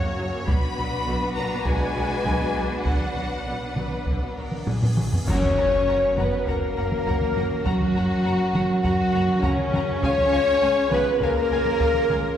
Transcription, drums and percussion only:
0.48 taiko
1.65 taiko
2.25 taiko
2.86 taiko
3.01 taiko mid
3.76 taiko mid
4.06 taiko
4.52 taiko mid
4.67 taiko low-mid
4.82 taiko low-mid
4.97 taiko mid
5.12 taiko low
5.28 concert bass drum, taiko, crash
5.43 taiko mid
6.18 taiko mid
6.47 taiko
6.92 taiko mid
7.07 taiko
7.22 taiko mid
7.37 taiko mid
7.66 taiko
7.81 taiko mid
8.55 taiko mid
8.84 taiko
9.29 taiko mid
9.43 taiko
9.58 taiko mid
9.73 taiko mid
10.03 taiko
10.18 taiko mid
10.91 taiko mid
11.20 taiko
11.65 taiko mid
11.80 taiko
11.94 taiko mid
12.10 taiko mid

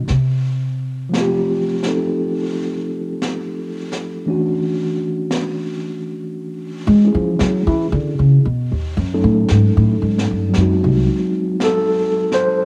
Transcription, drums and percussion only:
0.08 brush sweep, snare
1.14 brush sweep, snare
1.83 snare
2.17 brush sweep
3.22 brush sweep, snare
3.92 snare
4.26 brush sweep
5.31 brush sweep, snare
6.35 brush sweep
7.39 brush sweep, snare
8.43 brush sweep
9.48 brush sweep, snare
10.18 snare
10.54 brush sweep, snare
11.60 brush sweep, snare
12.32 snare

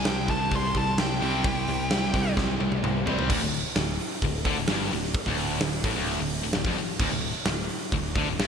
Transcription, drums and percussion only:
0.05 snare, open hi-hat
0.28 kick, open hi-hat
0.51 kick, open hi-hat
0.75 kick, open hi-hat
0.98 snare, open hi-hat
1.22 open hi-hat
1.44 kick, open hi-hat
1.68 open hi-hat
1.91 snare, open hi-hat
2.14 kick, open hi-hat
2.37 kick, snare
2.60 high tom
2.72 high tom
2.84 mid tom
3.07 floor tom
3.19 floor tom
3.30 kick, crash
3.53 open hi-hat
3.76 snare, open hi-hat
3.99 open hi-hat
4.22 kick, open hi-hat
4.45 kick, open hi-hat
4.68 snare, open hi-hat
4.91 open hi-hat
5.03 snare
5.14 kick, open hi-hat
5.26 kick
5.37 open hi-hat
5.61 snare, open hi-hat
5.84 kick, open hi-hat
6.07 open hi-hat
6.30 open hi-hat
6.53 snare, open hi-hat
6.65 kick
6.76 open hi-hat
6.99 kick, crash
7.22 open hi-hat
7.45 snare, open hi-hat
7.69 open hi-hat
7.92 kick, open hi-hat
8.15 kick, open hi-hat
8.39 snare, open hi-hat

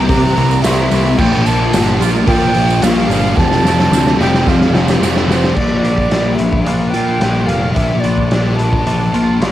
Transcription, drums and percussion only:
0.09 kick, open hi-hat, tambourine
0.36 open hi-hat, tambourine
0.51 tambourine
0.64 snare, open hi-hat, tambourine
0.91 open hi-hat, tambourine
1.06 tambourine
1.18 kick, tambourine, crash
1.33 tambourine
1.46 open hi-hat, tambourine
1.73 snare, open hi-hat, tambourine
1.88 tambourine
2.01 open hi-hat, tambourine
2.16 tambourine
2.27 kick, open hi-hat, tambourine
2.54 open hi-hat, tambourine
2.70 tambourine
2.82 snare, open hi-hat, tambourine
3.10 open hi-hat, tambourine
3.37 kick, snare, tambourine
3.51 snare, tambourine
3.65 snare, tambourine
3.79 snare, tambourine
3.93 snare, tambourine
4.07 snare
4.21 snare
4.34 snare, tambourine
4.47 kick, snare, tambourine
4.61 snare, tambourine
4.75 snare, tambourine
4.88 snare, tambourine
5.03 snare, tambourine
5.16 snare
5.31 snare, tambourine
5.44 snare
5.57 kick, crash
5.84 closed hi-hat
5.98 kick
6.11 snare, closed hi-hat
6.39 closed hi-hat
6.53 kick
6.66 closed hi-hat
6.94 closed hi-hat
7.21 snare, closed hi-hat
7.48 closed hi-hat
7.76 kick, closed hi-hat
8.04 closed hi-hat
8.18 kick
8.31 snare, closed hi-hat
8.59 closed hi-hat
8.73 kick
8.87 closed hi-hat
9.14 closed hi-hat
9.42 snare, closed hi-hat

